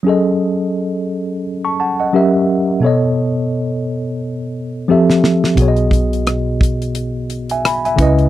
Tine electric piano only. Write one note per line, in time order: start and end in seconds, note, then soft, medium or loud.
0.03 2.07 F#3 medium
0.03 2.08 C#4 medium
0.03 2.09 G#4 medium
0.08 2.10 A4 medium
0.08 1.43 D#5 medium
1.65 1.78 A5 soft
1.65 1.78 C#6 medium
1.80 1.99 F#5 soft
1.80 1.98 A5 medium
2.00 2.32 D#5 soft
2.00 2.32 F#5 soft
2.13 2.82 F#3 medium
2.13 2.82 C#4 medium
2.13 2.83 G4 medium
2.13 2.83 A#4 soft
2.13 2.83 E5 medium
2.80 4.84 B2 medium
2.80 4.85 B3 medium
2.80 4.85 A4 medium
2.85 4.86 C#5 medium
2.85 4.87 D#5 medium
4.88 5.57 F3 medium
4.88 5.58 C4 medium
4.88 5.58 G4 medium
4.88 5.58 A4 medium
4.88 5.59 E5 medium
5.55 7.94 B2 medium
5.55 7.95 B3 medium
5.55 7.95 F#4 medium
5.60 7.96 G#4 medium
5.60 5.67 C#5 medium
5.68 6.98 D#5 medium
7.51 7.65 E5 soft
7.51 7.64 G#5 medium
7.65 7.84 G#5 medium
7.65 7.84 B5 medium
7.85 8.18 E5 soft
7.85 8.18 G#5 medium
7.96 8.29 C#3 medium
7.96 8.29 C#4 medium
7.96 8.29 E4 medium
8.01 8.29 B4 medium
8.01 8.29 D#5 medium